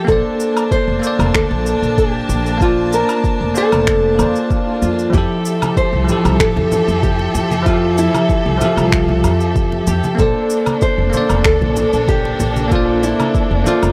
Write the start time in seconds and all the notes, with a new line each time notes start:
Already playing: G4 E5
0.05 A#1 A#3 D4 A4, kick, shaker
0.09 C5 D5 A5
0.40 shaker
0.57 low woodblock, shaker
0.71 C5, kick, shaker
0.88 F1
0.99 A#3 A4, shaker
1.04 C5 D5
1.19 F1, low woodblock, shaker
1.34 D2 A4, finger snap, kick, shaker
1.51 A#1
1.66 shaker
1.82 A#1, shaker
1.98 G4, kick, shaker
2.29 A#1, shaker
2.46 shaker
2.57 A#3 A5, kick, shaker
2.62 F4 C5 D5
2.93 A#4, shaker
3.09 low woodblock, shaker
3.24 kick, shaker
3.41 F1
3.54 A#3 A4 C5 D5, shaker
3.72 F1, low woodblock, shaker
3.87 finger snap, kick, swell, shaker
4.15 A#3 A4, low woodblock
4.19 F2 C5 D5, shaker
4.36 shaker
4.45 G4
4.50 kick, shaker
4.82 F2 F4, shaker
4.99 shaker
5.10 F2 F3 E4, kick, muted conga, shaker
5.14 F3 G4 A4 E5
5.45 shaker
5.62 high conga, low woodblock, shaker
5.77 C5, kick, shaker
5.93 C2
6.04 F3 E4
6.09 G4 A4, low conga, shaker
6.25 C2, muted conga, low woodblock, shaker
6.40 A2 A4, finger snap, kick, shaker
6.56 F2, high conga
6.72 low conga, shaker
6.88 F2, shaker
7.03 G4, kick, high conga, shaker
7.19 muted conga
7.35 F2, low conga, shaker
7.51 high conga, shaker
7.62 F3 F4 E5, kick
7.66 G4 A4, shaker
7.98 E4, shaker
8.14 high conga, low woodblock, shaker
8.29 kick, shaker
8.46 C2
8.57 F3 E5, shaker
8.61 F4 G4 A4, high conga, low conga
8.77 C2, low woodblock, shaker
8.92 finger snap, kick, shaker
9.09 high conga
9.24 F2, low conga, low woodblock, shaker
9.40 shaker
9.56 kick, high conga, shaker
9.72 muted conga
9.87 F2 G4, low conga, shaker
10.04 high conga, shaker
10.15 A#1 A#3 D4 A4, kick, shaker
10.19 A4 C5 D5, muted conga
10.50 shaker
10.66 high conga, low woodblock, shaker
10.81 C5, kick, shaker
10.98 F1
11.10 A#3 A4, shaker
11.14 C5 D5, high conga, low conga
11.30 F1, muted conga, low woodblock, shaker
11.44 D2 A4, finger snap, kick, shaker
11.61 A#1, high conga
11.76 low conga, shaker
11.93 A#1, shaker
12.08 G4, kick, high conga, shaker
12.25 muted conga
12.40 A#1, low conga, shaker
12.56 high conga, shaker
12.68 A#3 F4 A4, kick, muted conga, shaker
12.73 C5 D5
13.03 E4, shaker
13.20 high conga, low woodblock, shaker
13.35 kick, shaker
13.51 F1
13.64 A#3 F4 A4 C5, low conga, shaker
13.68 D5
13.83 F1, low woodblock, shaker